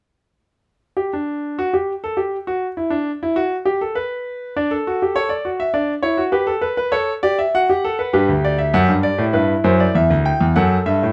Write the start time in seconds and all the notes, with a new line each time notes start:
0.97 G4
1.13 D4
1.59 F#4
1.74 G4
2.04 A4
2.17 G4
2.47 F#4
2.77 E4
2.90 D4
3.23 E4
3.36 F#4
3.65 G4
3.81 A4
3.95 B4
4.56 D4 D5
4.71 A4
4.87 F#4
5.02 G4
5.16 A4 C#5
5.29 D5
5.45 F#4
5.60 E5
5.74 D4 D5
6.03 E4 C#5
6.18 F#4
6.32 G4 B4
6.47 A4
6.61 B4
6.77 B4
6.92 A4 C#5
7.23 G4 D5
7.39 E5
7.55 F#4 F#5
7.70 G4
7.84 A4
7.99 B4
8.13 G2 G4 B4
8.29 D2
8.45 D5
8.58 E5
8.74 F#2 F#5
8.88 G2
9.03 D5
9.18 A2
9.33 G2 E4 B4
9.64 F#2 C5
9.80 D5
9.95 E2 E5
10.10 D2
10.25 G5
10.41 E2
10.56 F#2 A4 F#5
10.86 G2 E5
11.03 A2